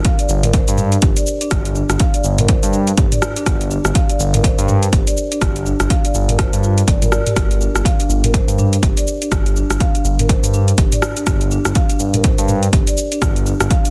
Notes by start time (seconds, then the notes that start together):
0.05 F5, kick, closed hi-hat, shaker
0.19 D5, closed hi-hat, shaker
0.29 G1, shaker
0.43 A#4, closed hi-hat, mid tom, shaker
0.54 C5, kick, closed hi-hat, shaker
0.68 G2, closed hi-hat, shaker
0.78 D4, mid tom, shaker
0.92 closed hi-hat, shaker
1.02 G1 G4, kick, closed hi-hat, shaker
1.16 D5, closed hi-hat, shaker
1.27 shaker
1.41 D4, closed hi-hat, shaker
1.51 G1, kick, cross-stick, closed hi-hat, shaker
1.65 closed hi-hat, shaker
1.75 D4, shaker
1.90 G1, cross-stick, closed hi-hat, shaker
2.00 F5, kick, closed hi-hat, shaker
2.14 D5, closed hi-hat, shaker
2.24 G1, shaker
2.38 A#4, closed hi-hat, mid tom, shaker
2.48 C5, kick, closed hi-hat, shaker
2.63 G2, closed hi-hat, shaker
2.73 D4, shaker
2.87 closed hi-hat, shaker
2.97 G1 G4, kick, closed hi-hat, shaker
3.12 D5, closed hi-hat, mid tom, shaker
3.22 cross-stick, shaker
3.36 D4, closed hi-hat, shaker
3.46 G1, kick, cross-stick, closed hi-hat, shaker
3.61 closed hi-hat, shaker
3.71 D4, shaker
3.85 G1, cross-stick, shaker
3.95 F5, kick, closed hi-hat, shaker
4.09 D5, closed hi-hat, shaker
4.19 G1, shaker
4.34 A#4, closed hi-hat, mid tom, shaker
4.44 C5, kick, closed hi-hat, shaker
4.58 G2, closed hi-hat, shaker
4.68 D4, mid tom, shaker
4.83 closed hi-hat, shaker
4.93 G1 G4, kick, closed hi-hat, shaker
5.07 D5, closed hi-hat, shaker
5.17 shaker
5.31 D4, closed hi-hat, shaker
5.41 G1, kick, cross-stick, closed hi-hat, shaker
5.56 closed hi-hat, shaker
5.66 D4, shaker
5.80 G1, cross-stick, closed hi-hat, shaker
5.90 F5, kick, closed hi-hat, shaker
6.04 D5, closed hi-hat, shaker
6.14 G1, shaker
6.29 A#4, closed hi-hat, mid tom, shaker
6.39 C5, kick, cross-stick, closed hi-hat, shaker
6.53 G2, closed hi-hat, shaker
6.63 F4, shaker
6.78 closed hi-hat, shaker
6.88 G1 D5, kick, closed hi-hat, high tom, shaker
7.02 A#4, closed hi-hat, mid tom, high tom, shaker
7.12 D5, cross-stick, shaker
7.27 G4, closed hi-hat, mid tom, shaker
7.36 G1, kick, cross-stick, closed hi-hat, shaker
7.51 closed hi-hat, shaker
7.61 D4, shaker
7.75 G1, cross-stick, shaker
7.85 F5, kick, closed hi-hat, shaker
8.00 D4, closed hi-hat, shaker
8.09 G1, shaker
8.24 A#4, closed hi-hat, mid tom, shaker
8.34 C5, kick, closed hi-hat, shaker
8.48 G2, closed hi-hat, shaker
8.58 D4, mid tom, shaker
8.73 closed hi-hat, shaker
8.83 G1 G4, kick, closed hi-hat, shaker
8.97 D5, closed hi-hat, shaker
9.07 shaker
9.22 D4, closed hi-hat, shaker
9.32 G1, kick, cross-stick, closed hi-hat, shaker
9.46 closed hi-hat, shaker
9.56 D4, shaker
9.70 G1, cross-stick, closed hi-hat, shaker
9.80 F5, kick, closed hi-hat, shaker
9.95 D4, closed hi-hat, shaker
10.05 G1, shaker
10.19 A#4, closed hi-hat, mid tom, shaker
10.29 kick, closed hi-hat, shaker
10.43 G2, closed hi-hat, shaker
10.54 D4, shaker
10.68 closed hi-hat, shaker
10.78 G1 G4, kick, closed hi-hat, shaker
10.92 D5, closed hi-hat, mid tom, shaker
11.02 cross-stick, shaker
11.17 D4, closed hi-hat, shaker
11.27 G1 G4, kick, cross-stick, closed hi-hat, shaker
11.41 closed hi-hat, shaker
11.51 D4, shaker
11.65 G1, cross-stick, shaker
11.75 F5, kick, closed hi-hat, shaker
11.90 D4, closed hi-hat, shaker
12.00 G1, shaker
12.14 A#4, closed hi-hat, mid tom, shaker
12.24 C5, kick, closed hi-hat, shaker
12.38 G2, closed hi-hat, shaker
12.48 D4, mid tom, shaker
12.63 closed hi-hat, shaker
12.73 G1 G4, kick, closed hi-hat, shaker
12.87 D5, closed hi-hat, shaker
12.97 shaker
13.12 D4, closed hi-hat, shaker
13.22 G1, kick, cross-stick, closed hi-hat, shaker
13.36 closed hi-hat, shaker
13.46 D4, shaker
13.60 G1, cross-stick, closed hi-hat, shaker
13.71 F5, kick, closed hi-hat, shaker
13.85 D4, closed hi-hat, shaker